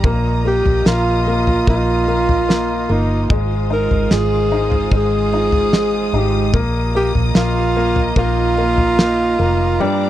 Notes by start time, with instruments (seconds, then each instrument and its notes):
Already playing: steel-string acoustic guitar A#3 D4 G4, string section A#5
0.03 fingered electric bass A#1, steel-string acoustic guitar A#2, grand piano A#3, string section F4 D#5 D#6, kick, floor tom
0.45 steel-string acoustic guitar A#3, grand piano A#3, alto saxophone G4
0.65 fingered electric bass A#1, floor tom
0.85 fingered electric bass A#1, grand piano A#3, steel-string acoustic guitar F4, alto saxophone F4, snare
1.26 steel-string acoustic guitar A#3, grand piano A#3
1.47 floor tom
1.67 fingered electric bass A#1, grand piano A#3, steel-string acoustic guitar D#4, alto saxophone F4, kick
2.08 grand piano A#3, steel-string acoustic guitar F4
2.29 floor tom
2.49 grand piano A#3, steel-string acoustic guitar D#4, snare
2.89 fingered electric bass G1, steel-string acoustic guitar A#3, grand piano A#3, alto saxophone D#4
3.29 fingered electric bass G#1, steel-string acoustic guitar G#2, grand piano G#3, string section C5 F5 D#6, kick, floor tom
3.70 steel-string acoustic guitar G#3, grand piano D#4, alto saxophone A#4
3.91 fingered electric bass G#1, floor tom
4.10 fingered electric bass G#1, grand piano G#3, steel-string acoustic guitar F4, alto saxophone G#4, snare
4.51 steel-string acoustic guitar G#3, grand piano D#4
4.72 floor tom
4.92 fingered electric bass G#1, grand piano G#3, steel-string acoustic guitar C4, kick
4.96 alto saxophone G#4
5.32 grand piano D#4, steel-string acoustic guitar F4
5.52 floor tom
5.73 grand piano G#3, steel-string acoustic guitar C4, snare
6.13 fingered electric bass G#1, steel-string acoustic guitar G#3, grand piano D#4, alto saxophone G4
6.53 fingered electric bass A#1, steel-string acoustic guitar A#2, grand piano A#3, string section D#5 A#5, kick, floor tom
6.95 steel-string acoustic guitar A#3, grand piano A#3, alto saxophone G4
7.15 fingered electric bass A#1, floor tom
7.35 fingered electric bass A#1, grand piano A#3, alto saxophone F4, steel-string acoustic guitar F4, snare
7.77 grand piano A#3, steel-string acoustic guitar A#3
7.96 floor tom
8.16 fingered electric bass A#1, grand piano A#3, steel-string acoustic guitar D#4, alto saxophone F4, kick
8.57 grand piano A#3, steel-string acoustic guitar F4
8.78 floor tom
8.98 grand piano A#3, steel-string acoustic guitar D#4, snare
9.39 fingered electric bass F1, steel-string acoustic guitar A#3, grand piano A#3
9.80 steel-string acoustic guitar G2, grand piano G3, alto saxophone D4, string section G4 D5 D6